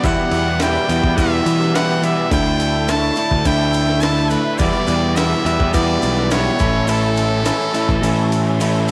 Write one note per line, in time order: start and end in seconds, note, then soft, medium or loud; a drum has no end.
0.03 0.59 E2 loud
0.03 0.15 E2 loud
0.03 0.60 B2 loud
0.03 0.61 E3 loud
0.03 0.61 G3 loud
0.03 0.61 B3 loud
0.03 0.62 E4 loud
0.03 0.60 G4 loud
0.03 0.61 F#5 loud
0.03 kick loud
0.03 crash loud
0.03 shaker medium
0.19 shaker soft
0.31 0.76 E2 medium
0.31 ride medium
0.31 shaker medium
0.60 0.88 E2 medium
0.60 0.88 B2 medium
0.60 0.90 E3 medium
0.60 0.89 G3 loud
0.60 0.90 B3 loud
0.60 0.91 E4 loud
0.60 0.88 G4 medium
0.60 1.19 G5 loud
0.60 snare loud
0.60 ride medium
0.60 shaker loud
0.74 shaker soft
0.89 1.00 E2 medium
0.89 1.16 E2 medium
0.89 1.16 B2 medium
0.89 1.17 E3 medium
0.89 1.17 G3 loud
0.89 1.17 B3 medium
0.89 1.19 E4 loud
0.89 1.17 G4 medium
0.89 ride medium
0.89 shaker medium
1.03 1.14 E2 medium
1.03 kick loud
1.03 shaker soft
1.17 1.73 E2 loud
1.17 1.40 E2 loud
1.17 1.73 B2 loud
1.17 1.74 E3 loud
1.17 1.74 G3 loud
1.17 1.74 B3 loud
1.17 1.76 E4 loud
1.17 1.75 G4 loud
1.17 1.77 E5 loud
1.17 kick loud
1.17 ride loud
1.17 shaker medium
1.46 2.13 E3 loud
1.46 ride medium
1.46 shaker medium
1.61 snare soft
1.61 shaker soft
1.74 2.00 E2 medium
1.74 2.01 B2 medium
1.74 2.02 E3 loud
1.74 2.02 G3 medium
1.74 2.02 B3 medium
1.74 2.03 E4 medium
1.74 2.03 G4 loud
1.74 2.03 F#5 loud
1.74 snare loud
1.74 ride loud
1.74 shaker medium
2.01 2.29 E2 medium
2.01 2.29 B2 medium
2.01 2.30 E3 medium
2.01 2.30 G3 medium
2.01 2.30 B3 loud
2.01 2.31 E4 medium
2.01 2.31 G4 loud
2.01 2.31 E5 medium
2.01 ride medium
2.01 shaker medium
2.30 3.10 D2 medium
2.30 2.87 D3 loud
2.30 2.87 A3 loud
2.30 2.88 D4 loud
2.30 2.89 E4 loud
2.30 2.88 A4 loud
2.30 2.91 G5 loud
2.30 kick loud
2.30 ride loud
2.30 shaker medium
2.45 shaker soft
2.60 ride medium
2.60 shaker medium
2.88 3.16 D3 medium
2.88 3.16 A3 medium
2.88 3.17 D4 medium
2.88 3.18 E4 medium
2.88 3.17 A4 loud
2.88 3.48 A5 loud
2.88 snare loud
2.88 ride loud
2.88 shaker medium
3.02 shaker soft
3.16 3.45 D3 medium
3.16 3.45 A3 loud
3.16 3.45 D4 loud
3.16 3.47 E4 medium
3.16 3.45 A4 medium
3.16 ride medium
3.16 shaker medium
3.30 3.42 D2 medium
3.30 kick medium
3.30 shaker soft
3.45 4.35 D2 loud
3.45 4.01 D3 medium
3.45 4.02 A3 loud
3.45 4.02 D4 loud
3.45 4.04 E4 loud
3.45 4.03 A4 loud
3.45 4.03 G5 loud
3.45 kick medium
3.45 ride loud
3.45 shaker medium
3.73 ride medium
3.73 shaker medium
3.86 snare soft
3.86 shaker soft
4.00 4.30 D3 medium
4.00 4.30 A3 medium
4.00 4.30 D4 medium
4.00 4.32 E4 loud
4.00 4.31 A4 medium
4.00 4.31 A5 loud
4.00 snare loud
4.00 ride loud
4.00 shaker medium
4.30 4.58 D3 medium
4.30 4.58 A3 loud
4.30 4.58 D4 medium
4.30 4.61 E4 loud
4.30 4.58 A4 medium
4.30 4.60 B4 medium
4.30 ride medium
4.30 shaker medium
4.58 5.14 E2 medium
4.58 4.71 E2 medium
4.58 5.14 B2 loud
4.58 5.16 E3 loud
4.58 5.16 G3 loud
4.58 5.16 B3 loud
4.58 5.17 E4 loud
4.58 5.16 G4 loud
4.58 5.18 D5 loud
4.58 kick loud
4.58 ride loud
4.58 shaker medium
4.73 shaker soft
4.87 5.33 E2 loud
4.87 ride medium
4.87 shaker medium
5.15 5.43 E2 loud
5.15 5.43 B2 medium
5.15 5.44 E3 medium
5.15 5.44 G3 medium
5.15 5.45 B3 medium
5.15 5.46 E4 loud
5.15 5.45 G4 loud
5.15 5.73 E5 loud
5.15 snare loud
5.15 ride loud
5.15 shaker medium
5.31 shaker soft
5.44 5.72 E2 medium
5.44 5.56 E2 medium
5.44 5.72 B2 medium
5.44 5.72 E3 medium
5.44 5.73 G3 loud
5.44 5.73 B3 loud
5.44 5.74 E4 medium
5.44 5.74 G4 loud
5.44 ride medium
5.44 shaker medium
5.59 5.71 E2 medium
5.59 kick medium
5.59 shaker soft
5.73 6.28 E2 loud
5.73 5.96 E2 loud
5.73 6.29 B2 loud
5.73 6.30 E3 loud
5.73 6.30 G3 loud
5.73 6.30 B3 loud
5.73 6.31 E4 loud
5.73 6.32 G4 loud
5.73 6.33 D5 loud
5.73 kick loud
5.73 ride loud
5.73 shaker medium
6.02 6.48 B1 medium
6.02 ride medium
6.02 shaker medium
6.16 snare soft
6.16 shaker soft
6.30 6.57 E2 medium
6.30 6.58 B2 medium
6.30 6.58 E3 medium
6.30 6.58 G3 medium
6.30 6.58 B3 loud
6.30 6.58 E4 loud
6.30 6.59 G4 medium
6.30 6.91 C#5 loud
6.30 snare loud
6.30 ride loud
6.30 shaker medium
6.58 7.50 A1 loud
6.58 6.86 A2 medium
6.58 6.87 E3 loud
6.58 6.87 A3 loud
6.58 6.87 C#4 loud
6.58 6.87 E4 loud
6.58 6.89 A4 loud
6.58 kick loud
6.58 ride medium
6.58 shaker medium
6.87 7.43 A2 loud
6.87 7.44 E3 loud
6.87 7.44 A3 loud
6.87 7.44 C#4 loud
6.87 7.44 E4 loud
6.87 8.61 A4 loud
6.87 7.45 A4 loud
6.87 ride loud
6.87 shaker medium
7.02 shaker soft
7.16 ride medium
7.16 shaker medium
7.44 7.72 A2 medium
7.44 7.72 E3 medium
7.44 7.73 A3 medium
7.44 7.73 C#4 medium
7.44 7.74 E4 loud
7.44 7.74 A4 medium
7.44 snare loud
7.44 ride loud
7.44 shaker loud
7.61 shaker soft
7.73 8.01 A2 medium
7.73 8.02 E3 medium
7.73 8.02 A3 medium
7.73 8.03 C#4 medium
7.73 8.03 E4 medium
7.73 8.03 A4 medium
7.73 ride medium
7.73 shaker medium
7.89 8.00 A1 medium
7.89 kick medium
7.89 shaker soft
8.02 8.91 A1 loud
8.02 8.59 A2 loud
8.02 8.59 E3 loud
8.02 8.60 A3 loud
8.02 8.60 C#4 loud
8.02 8.61 E4 loud
8.02 8.60 A4 loud
8.02 ride loud
8.02 shaker loud
8.32 ride medium
8.32 shaker medium
8.47 shaker soft
8.60 8.87 A2 medium
8.60 8.88 E3 medium
8.60 8.89 A3 loud
8.60 8.89 C#4 loud
8.60 8.89 E4 medium
8.60 8.89 A4 medium
8.60 ride loud
8.60 shaker medium
8.75 shaker soft